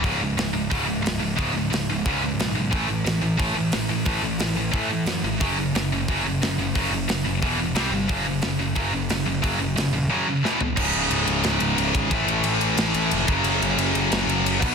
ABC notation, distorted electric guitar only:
X:1
M:4/4
L:1/8
Q:1/4=179
K:C#m
V:1 name="Distorted electric guitar" clef=bass
[C,,G,,C,] [C,,G,,] [C,,G,,] [C,,G,,] [C,,G,,C,] [C,,G,,] [C,,G,,] [C,,G,,] | [C,,G,,C,] [C,,G,,] [C,,G,,] [C,,G,,] [C,,G,,C,] [C,,G,,] [C,,G,,] [C,,G,,] | [A,,E,A,] [A,,E,] [A,,E,] [A,,E,] [A,,E,A,] [A,,E,] [A,,E,] [A,,E,] | [A,,E,A,] [A,,E,] [A,,E,] [A,,E,] [A,,E,A,] [A,,E,] [A,,E,] [A,,E,] |
[F,,C,F,] [F,,C,] [F,,C,] [F,,C,] [F,,C,F,] [F,,C,] [F,,C,] [F,,C,] | [F,,C,F,] [F,,C,] [F,,C,] [F,,C,] [E,,B,,E,] [E,,B,,] [=C,=G,=C] [C,G,] | [F,,C,F,] [F,,C,] [F,,C,] [F,,C,] [F,,C,F,] [F,,C,] [F,,C,] [F,,C,] | [F,,C,F,] [F,,C,] [F,,C,] [F,,C,] [F,,C,F,] [F,,C,] [E,,B,,E,] [E,,B,,] |
[C,,G,,C,]8 | [A,,E,A,]6- [A,,E,A,] [F,,C,F,]- | [F,,C,F,]6- [F,,C,F,] [B,,F,B,] |]